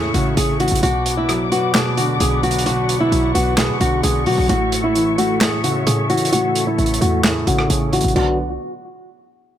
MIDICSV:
0, 0, Header, 1, 6, 480
1, 0, Start_track
1, 0, Tempo, 458015
1, 870, Time_signature, 4, 2, 24, 8
1, 10040, End_track
2, 0, Start_track
2, 0, Title_t, "String section"
2, 0, Program_c, 0, 48
2, 0, Note_on_c, 0, 69, 80
2, 0, Note_on_c, 0, 73, 72
2, 0, Note_on_c, 0, 76, 74
2, 0, Note_on_c, 0, 85, 89
2, 832, Note_off_c, 0, 69, 0
2, 832, Note_off_c, 0, 73, 0
2, 832, Note_off_c, 0, 76, 0
2, 832, Note_off_c, 0, 85, 0
2, 871, Note_on_c, 0, 71, 76
2, 871, Note_on_c, 0, 74, 70
2, 871, Note_on_c, 0, 78, 72
2, 871, Note_on_c, 0, 86, 82
2, 2771, Note_off_c, 0, 86, 0
2, 2790, Note_on_c, 0, 85, 84
2, 4672, Note_off_c, 0, 71, 0
2, 4672, Note_off_c, 0, 74, 0
2, 4672, Note_off_c, 0, 78, 0
2, 4710, Note_on_c, 0, 69, 78
2, 4710, Note_on_c, 0, 73, 72
2, 4710, Note_on_c, 0, 76, 71
2, 8508, Note_off_c, 0, 85, 0
2, 8511, Note_off_c, 0, 69, 0
2, 8511, Note_off_c, 0, 73, 0
2, 8511, Note_off_c, 0, 76, 0
2, 8549, Note_on_c, 0, 47, 69
2, 8550, Note_on_c, 0, 59, 67
2, 8550, Note_on_c, 0, 74, 68
2, 8550, Note_on_c, 0, 78, 77
2, 8772, Note_off_c, 0, 47, 0
2, 8773, Note_off_c, 0, 59, 0
2, 8773, Note_off_c, 0, 74, 0
2, 8773, Note_off_c, 0, 78, 0
2, 10040, End_track
3, 0, Start_track
3, 0, Title_t, "Nylon-string guitar"
3, 0, Program_c, 1, 24
3, 0, Note_on_c, 1, 68, 79
3, 134, Note_off_c, 1, 68, 0
3, 148, Note_on_c, 1, 66, 84
3, 373, Note_off_c, 1, 66, 0
3, 388, Note_on_c, 1, 68, 88
3, 613, Note_off_c, 1, 68, 0
3, 630, Note_on_c, 1, 66, 77
3, 854, Note_off_c, 1, 66, 0
3, 868, Note_on_c, 1, 66, 110
3, 1207, Note_off_c, 1, 66, 0
3, 1230, Note_on_c, 1, 64, 78
3, 1568, Note_off_c, 1, 64, 0
3, 1589, Note_on_c, 1, 66, 84
3, 1813, Note_off_c, 1, 66, 0
3, 1829, Note_on_c, 1, 68, 70
3, 2053, Note_off_c, 1, 68, 0
3, 2068, Note_on_c, 1, 66, 75
3, 2293, Note_off_c, 1, 66, 0
3, 2309, Note_on_c, 1, 68, 82
3, 2533, Note_off_c, 1, 68, 0
3, 2549, Note_on_c, 1, 66, 81
3, 2773, Note_off_c, 1, 66, 0
3, 2789, Note_on_c, 1, 66, 102
3, 3127, Note_off_c, 1, 66, 0
3, 3148, Note_on_c, 1, 64, 82
3, 3487, Note_off_c, 1, 64, 0
3, 3508, Note_on_c, 1, 66, 95
3, 3733, Note_off_c, 1, 66, 0
3, 3747, Note_on_c, 1, 68, 80
3, 3973, Note_off_c, 1, 68, 0
3, 3988, Note_on_c, 1, 66, 84
3, 4213, Note_off_c, 1, 66, 0
3, 4229, Note_on_c, 1, 68, 81
3, 4453, Note_off_c, 1, 68, 0
3, 4469, Note_on_c, 1, 66, 73
3, 4694, Note_off_c, 1, 66, 0
3, 4709, Note_on_c, 1, 66, 103
3, 5048, Note_off_c, 1, 66, 0
3, 5070, Note_on_c, 1, 64, 81
3, 5408, Note_off_c, 1, 64, 0
3, 5430, Note_on_c, 1, 66, 89
3, 5654, Note_off_c, 1, 66, 0
3, 5670, Note_on_c, 1, 68, 78
3, 5894, Note_off_c, 1, 68, 0
3, 5910, Note_on_c, 1, 66, 67
3, 6134, Note_off_c, 1, 66, 0
3, 6150, Note_on_c, 1, 68, 83
3, 6374, Note_off_c, 1, 68, 0
3, 6389, Note_on_c, 1, 66, 82
3, 6614, Note_off_c, 1, 66, 0
3, 6629, Note_on_c, 1, 66, 109
3, 6967, Note_off_c, 1, 66, 0
3, 6990, Note_on_c, 1, 64, 78
3, 7328, Note_off_c, 1, 64, 0
3, 7351, Note_on_c, 1, 66, 88
3, 7574, Note_off_c, 1, 66, 0
3, 7590, Note_on_c, 1, 68, 77
3, 7814, Note_off_c, 1, 68, 0
3, 7829, Note_on_c, 1, 66, 84
3, 8053, Note_off_c, 1, 66, 0
3, 8068, Note_on_c, 1, 68, 89
3, 8293, Note_off_c, 1, 68, 0
3, 8311, Note_on_c, 1, 66, 77
3, 8534, Note_off_c, 1, 66, 0
3, 8549, Note_on_c, 1, 66, 86
3, 8772, Note_off_c, 1, 66, 0
3, 10040, End_track
4, 0, Start_track
4, 0, Title_t, "Grand piano"
4, 0, Program_c, 2, 0
4, 0, Control_c, 2, 64, 127
4, 0, Note_on_c, 2, 45, 93
4, 0, Note_on_c, 2, 49, 78
4, 0, Note_on_c, 2, 52, 86
4, 0, Note_on_c, 2, 57, 89
4, 149, Note_off_c, 2, 49, 0
4, 149, Note_on_c, 2, 49, 82
4, 614, Note_off_c, 2, 52, 0
4, 630, Note_on_c, 2, 52, 87
4, 868, Note_on_c, 2, 47, 86
4, 869, Note_off_c, 2, 49, 0
4, 870, Note_off_c, 2, 45, 0
4, 870, Note_off_c, 2, 52, 0
4, 871, Note_off_c, 2, 57, 0
4, 885, Control_c, 2, 64, 0
4, 1075, Control_c, 2, 64, 127
4, 1355, Note_on_c, 2, 54, 83
4, 1588, Note_on_c, 2, 59, 80
4, 1812, Note_off_c, 2, 47, 0
4, 1828, Note_on_c, 2, 47, 97
4, 2072, Note_on_c, 2, 50, 78
4, 2532, Note_off_c, 2, 54, 0
4, 2548, Note_on_c, 2, 54, 82
4, 2775, Note_off_c, 2, 47, 0
4, 2789, Note_off_c, 2, 59, 0
4, 2791, Note_on_c, 2, 47, 94
4, 3254, Note_off_c, 2, 54, 0
4, 3270, Note_on_c, 2, 54, 88
4, 3271, Note_off_c, 2, 50, 0
4, 3505, Note_on_c, 2, 59, 90
4, 3725, Note_off_c, 2, 47, 0
4, 3741, Note_on_c, 2, 47, 85
4, 3994, Note_on_c, 2, 50, 79
4, 4452, Note_off_c, 2, 54, 0
4, 4467, Note_on_c, 2, 54, 82
4, 4704, Note_on_c, 2, 45, 93
4, 4705, Note_off_c, 2, 47, 0
4, 4707, Note_off_c, 2, 59, 0
4, 4708, Note_off_c, 2, 54, 0
4, 4712, Note_off_c, 2, 50, 0
4, 4722, Control_c, 2, 64, 0
4, 4904, Control_c, 2, 64, 127
4, 5191, Note_on_c, 2, 52, 91
4, 5432, Note_on_c, 2, 57, 83
4, 5654, Note_off_c, 2, 45, 0
4, 5670, Note_on_c, 2, 45, 86
4, 5908, Note_on_c, 2, 49, 75
4, 6373, Note_off_c, 2, 52, 0
4, 6388, Note_on_c, 2, 52, 92
4, 6617, Note_off_c, 2, 45, 0
4, 6631, Note_off_c, 2, 57, 0
4, 6633, Note_on_c, 2, 45, 89
4, 7094, Note_off_c, 2, 52, 0
4, 7109, Note_off_c, 2, 49, 0
4, 7110, Note_on_c, 2, 52, 87
4, 7353, Note_on_c, 2, 57, 86
4, 7575, Note_off_c, 2, 45, 0
4, 7591, Note_on_c, 2, 45, 100
4, 7828, Note_on_c, 2, 49, 83
4, 8294, Note_off_c, 2, 52, 0
4, 8310, Note_on_c, 2, 52, 85
4, 8549, Note_off_c, 2, 49, 0
4, 8549, Note_on_c, 2, 50, 84
4, 8549, Note_on_c, 2, 54, 76
4, 8549, Note_on_c, 2, 59, 78
4, 8549, Note_on_c, 2, 62, 95
4, 8550, Note_off_c, 2, 45, 0
4, 8550, Note_off_c, 2, 52, 0
4, 8551, Note_off_c, 2, 57, 0
4, 8561, Control_c, 2, 64, 0
4, 8773, Note_off_c, 2, 50, 0
4, 8773, Note_off_c, 2, 54, 0
4, 8773, Note_off_c, 2, 59, 0
4, 8773, Note_off_c, 2, 62, 0
4, 10040, End_track
5, 0, Start_track
5, 0, Title_t, "808-style bass"
5, 0, Program_c, 3, 38
5, 0, Note_on_c, 3, 40, 105
5, 130, Note_off_c, 3, 40, 0
5, 149, Note_on_c, 3, 33, 106
5, 380, Note_off_c, 3, 33, 0
5, 390, Note_on_c, 3, 33, 109
5, 735, Note_off_c, 3, 33, 0
5, 749, Note_on_c, 3, 33, 104
5, 862, Note_off_c, 3, 33, 0
5, 869, Note_on_c, 3, 35, 110
5, 1590, Note_on_c, 3, 42, 101
5, 1605, Note_off_c, 3, 35, 0
5, 1949, Note_on_c, 3, 35, 95
5, 1965, Note_off_c, 3, 42, 0
5, 2291, Note_off_c, 3, 35, 0
5, 2310, Note_on_c, 3, 35, 107
5, 3231, Note_off_c, 3, 35, 0
5, 3269, Note_on_c, 3, 35, 106
5, 3500, Note_off_c, 3, 35, 0
5, 3509, Note_on_c, 3, 35, 105
5, 3870, Note_on_c, 3, 47, 97
5, 3885, Note_off_c, 3, 35, 0
5, 3983, Note_off_c, 3, 47, 0
5, 3989, Note_on_c, 3, 35, 103
5, 4220, Note_off_c, 3, 35, 0
5, 4229, Note_on_c, 3, 35, 109
5, 4469, Note_on_c, 3, 47, 101
5, 4485, Note_off_c, 3, 35, 0
5, 4583, Note_off_c, 3, 47, 0
5, 4589, Note_on_c, 3, 35, 106
5, 4705, Note_off_c, 3, 35, 0
5, 4709, Note_on_c, 3, 33, 114
5, 6108, Note_off_c, 3, 33, 0
5, 6150, Note_on_c, 3, 45, 114
5, 7071, Note_off_c, 3, 45, 0
5, 7110, Note_on_c, 3, 33, 105
5, 7340, Note_off_c, 3, 33, 0
5, 7349, Note_on_c, 3, 40, 108
5, 7810, Note_off_c, 3, 40, 0
5, 7830, Note_on_c, 3, 33, 106
5, 8060, Note_off_c, 3, 33, 0
5, 8070, Note_on_c, 3, 33, 108
5, 8415, Note_off_c, 3, 33, 0
5, 8429, Note_on_c, 3, 33, 99
5, 8544, Note_off_c, 3, 33, 0
5, 8549, Note_on_c, 3, 35, 116
5, 8996, Note_off_c, 3, 35, 0
5, 10040, End_track
6, 0, Start_track
6, 0, Title_t, "Drums"
6, 149, Note_on_c, 9, 42, 84
6, 254, Note_off_c, 9, 42, 0
6, 388, Note_on_c, 9, 42, 100
6, 493, Note_off_c, 9, 42, 0
6, 626, Note_on_c, 9, 46, 83
6, 629, Note_on_c, 9, 42, 65
6, 709, Note_off_c, 9, 42, 0
6, 709, Note_on_c, 9, 42, 64
6, 731, Note_off_c, 9, 46, 0
6, 790, Note_off_c, 9, 42, 0
6, 790, Note_on_c, 9, 42, 70
6, 869, Note_off_c, 9, 42, 0
6, 869, Note_on_c, 9, 42, 87
6, 973, Note_off_c, 9, 42, 0
6, 1109, Note_on_c, 9, 42, 94
6, 1214, Note_off_c, 9, 42, 0
6, 1350, Note_on_c, 9, 37, 73
6, 1351, Note_on_c, 9, 42, 66
6, 1455, Note_off_c, 9, 37, 0
6, 1456, Note_off_c, 9, 42, 0
6, 1591, Note_on_c, 9, 42, 64
6, 1696, Note_off_c, 9, 42, 0
6, 1826, Note_on_c, 9, 42, 85
6, 1829, Note_on_c, 9, 38, 114
6, 1830, Note_on_c, 9, 39, 93
6, 1931, Note_off_c, 9, 42, 0
6, 1934, Note_off_c, 9, 38, 0
6, 1935, Note_off_c, 9, 39, 0
6, 2069, Note_on_c, 9, 42, 82
6, 2174, Note_off_c, 9, 42, 0
6, 2308, Note_on_c, 9, 42, 94
6, 2413, Note_off_c, 9, 42, 0
6, 2549, Note_on_c, 9, 42, 45
6, 2629, Note_off_c, 9, 42, 0
6, 2629, Note_on_c, 9, 42, 63
6, 2709, Note_off_c, 9, 42, 0
6, 2709, Note_on_c, 9, 42, 81
6, 2788, Note_off_c, 9, 42, 0
6, 2788, Note_on_c, 9, 42, 87
6, 2893, Note_off_c, 9, 42, 0
6, 3028, Note_on_c, 9, 42, 93
6, 3133, Note_off_c, 9, 42, 0
6, 3271, Note_on_c, 9, 42, 68
6, 3376, Note_off_c, 9, 42, 0
6, 3511, Note_on_c, 9, 42, 67
6, 3616, Note_off_c, 9, 42, 0
6, 3746, Note_on_c, 9, 42, 85
6, 3749, Note_on_c, 9, 38, 118
6, 3750, Note_on_c, 9, 39, 93
6, 3851, Note_off_c, 9, 42, 0
6, 3854, Note_off_c, 9, 38, 0
6, 3855, Note_off_c, 9, 39, 0
6, 3989, Note_on_c, 9, 42, 80
6, 4094, Note_off_c, 9, 42, 0
6, 4228, Note_on_c, 9, 42, 96
6, 4333, Note_off_c, 9, 42, 0
6, 4466, Note_on_c, 9, 46, 80
6, 4571, Note_off_c, 9, 46, 0
6, 4709, Note_on_c, 9, 42, 87
6, 4813, Note_off_c, 9, 42, 0
6, 4949, Note_on_c, 9, 42, 94
6, 5054, Note_off_c, 9, 42, 0
6, 5191, Note_on_c, 9, 42, 65
6, 5296, Note_off_c, 9, 42, 0
6, 5431, Note_on_c, 9, 42, 65
6, 5536, Note_off_c, 9, 42, 0
6, 5667, Note_on_c, 9, 42, 84
6, 5670, Note_on_c, 9, 38, 118
6, 5670, Note_on_c, 9, 39, 98
6, 5772, Note_off_c, 9, 42, 0
6, 5775, Note_off_c, 9, 38, 0
6, 5775, Note_off_c, 9, 39, 0
6, 5910, Note_on_c, 9, 42, 83
6, 6014, Note_off_c, 9, 42, 0
6, 6149, Note_on_c, 9, 42, 99
6, 6254, Note_off_c, 9, 42, 0
6, 6389, Note_on_c, 9, 42, 47
6, 6470, Note_off_c, 9, 42, 0
6, 6470, Note_on_c, 9, 42, 61
6, 6549, Note_off_c, 9, 42, 0
6, 6549, Note_on_c, 9, 42, 82
6, 6629, Note_off_c, 9, 42, 0
6, 6629, Note_on_c, 9, 42, 86
6, 6734, Note_off_c, 9, 42, 0
6, 6869, Note_on_c, 9, 42, 93
6, 6974, Note_off_c, 9, 42, 0
6, 7109, Note_on_c, 9, 42, 41
6, 7189, Note_off_c, 9, 42, 0
6, 7189, Note_on_c, 9, 42, 55
6, 7270, Note_off_c, 9, 42, 0
6, 7270, Note_on_c, 9, 42, 67
6, 7352, Note_off_c, 9, 42, 0
6, 7352, Note_on_c, 9, 42, 65
6, 7456, Note_off_c, 9, 42, 0
6, 7587, Note_on_c, 9, 42, 85
6, 7590, Note_on_c, 9, 38, 120
6, 7591, Note_on_c, 9, 39, 94
6, 7692, Note_off_c, 9, 42, 0
6, 7695, Note_off_c, 9, 38, 0
6, 7696, Note_off_c, 9, 39, 0
6, 7830, Note_on_c, 9, 42, 82
6, 7934, Note_off_c, 9, 42, 0
6, 7950, Note_on_c, 9, 37, 94
6, 8054, Note_off_c, 9, 37, 0
6, 8069, Note_on_c, 9, 42, 97
6, 8174, Note_off_c, 9, 42, 0
6, 8307, Note_on_c, 9, 46, 81
6, 8310, Note_on_c, 9, 42, 76
6, 8390, Note_off_c, 9, 42, 0
6, 8390, Note_on_c, 9, 42, 59
6, 8411, Note_off_c, 9, 46, 0
6, 8470, Note_off_c, 9, 42, 0
6, 8470, Note_on_c, 9, 42, 46
6, 8549, Note_on_c, 9, 49, 88
6, 8575, Note_off_c, 9, 42, 0
6, 8654, Note_off_c, 9, 49, 0
6, 10040, End_track
0, 0, End_of_file